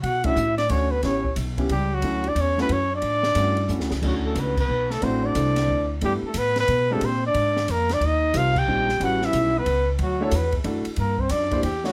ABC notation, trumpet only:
X:1
M:3/4
L:1/8
Q:"Swing" 1/4=181
K:D
V:1 name="Trumpet"
f e2 d c B | c2 z2 G F- | F d c B c d- | d4- d z |
F A B B2 A | =c d4 z | G A B B2 A | =c d3 _B d |
_e2 =f g3 | f e2 B2 z | F A B z3 | _B =c d2 G F |]